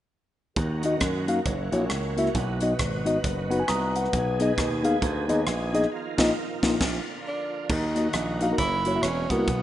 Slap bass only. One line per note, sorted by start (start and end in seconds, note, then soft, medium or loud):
0.56 0.94 D#2 medium
1.01 1.39 F#2 medium
1.46 1.69 F#1 medium
1.72 1.87 A#1 medium
1.90 2.28 C#2 medium
2.35 2.73 B1 loud
2.79 3.17 G#1 medium
3.24 3.62 F#1 medium
3.69 4.07 C2 medium
4.13 4.51 B1 loud
4.58 4.96 D#2 medium
5.02 5.25 D2 medium
5.29 5.44 D#2 medium
5.47 5.85 A#1 medium
6.18 6.30 A#1 medium
6.63 6.75 A#1 medium
6.81 6.99 A#1 medium
7.70 8.07 D#2 medium
8.13 8.52 A#1 medium
8.58 8.96 F#1 medium
9.03 9.26 E1 medium
9.30 9.45 C2 medium
9.48 9.62 B1 medium